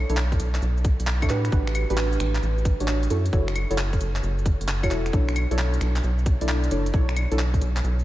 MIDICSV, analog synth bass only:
0, 0, Header, 1, 2, 480
1, 0, Start_track
1, 0, Key_signature, 2, "minor"
1, 0, Tempo, 451128
1, 1623, Time_signature, 4, 2, 24, 8
1, 8558, End_track
2, 0, Start_track
2, 0, Title_t, "Analog synth bass"
2, 0, Program_c, 0, 38
2, 101, Note_on_c, 0, 35, 106
2, 394, Note_off_c, 0, 35, 0
2, 419, Note_on_c, 0, 35, 102
2, 627, Note_off_c, 0, 35, 0
2, 659, Note_on_c, 0, 35, 105
2, 1006, Note_off_c, 0, 35, 0
2, 1061, Note_on_c, 0, 35, 92
2, 1354, Note_off_c, 0, 35, 0
2, 1382, Note_on_c, 0, 45, 89
2, 1588, Note_off_c, 0, 45, 0
2, 1621, Note_on_c, 0, 33, 96
2, 1967, Note_off_c, 0, 33, 0
2, 2024, Note_on_c, 0, 33, 103
2, 2315, Note_off_c, 0, 33, 0
2, 2342, Note_on_c, 0, 33, 102
2, 2548, Note_off_c, 0, 33, 0
2, 2582, Note_on_c, 0, 33, 100
2, 2927, Note_off_c, 0, 33, 0
2, 2982, Note_on_c, 0, 33, 90
2, 3275, Note_off_c, 0, 33, 0
2, 3302, Note_on_c, 0, 42, 88
2, 3508, Note_off_c, 0, 42, 0
2, 3541, Note_on_c, 0, 30, 94
2, 3887, Note_off_c, 0, 30, 0
2, 3941, Note_on_c, 0, 30, 103
2, 4234, Note_off_c, 0, 30, 0
2, 4262, Note_on_c, 0, 30, 100
2, 4468, Note_off_c, 0, 30, 0
2, 4503, Note_on_c, 0, 30, 101
2, 4848, Note_off_c, 0, 30, 0
2, 4901, Note_on_c, 0, 30, 89
2, 5194, Note_off_c, 0, 30, 0
2, 5222, Note_on_c, 0, 28, 94
2, 5428, Note_off_c, 0, 28, 0
2, 5461, Note_on_c, 0, 35, 99
2, 5807, Note_off_c, 0, 35, 0
2, 5862, Note_on_c, 0, 35, 103
2, 6154, Note_off_c, 0, 35, 0
2, 6183, Note_on_c, 0, 35, 105
2, 6389, Note_off_c, 0, 35, 0
2, 6423, Note_on_c, 0, 35, 105
2, 6768, Note_off_c, 0, 35, 0
2, 6823, Note_on_c, 0, 35, 88
2, 7115, Note_off_c, 0, 35, 0
2, 7143, Note_on_c, 0, 30, 88
2, 7349, Note_off_c, 0, 30, 0
2, 7381, Note_on_c, 0, 35, 99
2, 7727, Note_off_c, 0, 35, 0
2, 7783, Note_on_c, 0, 35, 104
2, 8075, Note_off_c, 0, 35, 0
2, 8103, Note_on_c, 0, 35, 104
2, 8309, Note_off_c, 0, 35, 0
2, 8343, Note_on_c, 0, 35, 105
2, 8558, Note_off_c, 0, 35, 0
2, 8558, End_track
0, 0, End_of_file